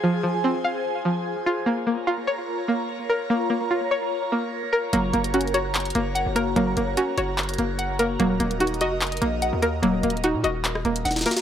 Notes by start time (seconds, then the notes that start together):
Already playing: F4 G#4 C5 F5 G#5
0.04 F3
0.23 F3
0.44 C4
0.64 F5
1.05 F3
1.46 F4
1.66 A#3 F4 A#4 C#5 A#5
1.87 A#3
2.07 F4
2.27 C#5
2.68 A#3
3.10 A#4
3.30 A#3
3.50 A#3
3.71 F4
3.91 C#5
4.32 A#3
4.73 A#4
4.93 F#1 F#3 A#3 F#4, closed hi-hat
5.13 F#1 A#3, closed hi-hat
5.24 closed hi-hat
5.34 C#4 F#4, closed hi-hat
5.41 closed hi-hat
5.47 closed hi-hat
5.54 F#4 C#5, closed hi-hat
5.75 clap, closed hi-hat
5.80 closed hi-hat
5.85 closed hi-hat
5.90 closed hi-hat
5.95 F#1 A#3, closed hi-hat
6.15 F#5, closed hi-hat
6.26 F#1
6.36 A#3 A#4, closed hi-hat
6.56 F#1 F#3 A#3, closed hi-hat
6.77 F#1 A#3, closed hi-hat
6.97 C#4 F#4, closed hi-hat
7.18 F#1 F#4 C#5, closed hi-hat
7.38 clap, closed hi-hat
7.43 closed hi-hat
7.49 closed hi-hat
7.54 closed hi-hat
7.58 F#1 A#3, closed hi-hat
7.79 F#5, closed hi-hat
7.99 A#3 A#4, closed hi-hat
8.19 D#1 F#3 A#3 A#4 D#5, closed hi-hat
8.40 D#1 A#3, closed hi-hat
8.51 closed hi-hat
8.60 D#4 F#4, closed hi-hat
8.67 closed hi-hat
8.74 closed hi-hat
8.81 F1 F#4 D#5, closed hi-hat
9.01 clap, closed hi-hat
9.07 closed hi-hat
9.12 closed hi-hat
9.17 closed hi-hat
9.22 A#1 A#3, closed hi-hat
9.42 F#5, closed hi-hat
9.53 D#2
9.62 A#3 A#4, closed hi-hat
9.83 D#1 F#3 A#3, closed hi-hat
10.03 D#1 A#3, closed hi-hat
10.10 closed hi-hat
10.17 closed hi-hat
10.24 D#4 F#4, closed hi-hat
10.34 A#2
10.44 D#1 F#4 D#5, closed hi-hat
10.65 clap, closed hi-hat
10.75 cross-stick
10.85 D#1 A#3, closed hi-hat
10.96 closed hi-hat
11.05 D#1 F#5, snare, closed hi-hat
11.11 snare, closed hi-hat
11.16 snare, closed hi-hat
11.21 snare
11.26 A#3 A#4, snare, open hi-hat
11.31 snare
11.37 snare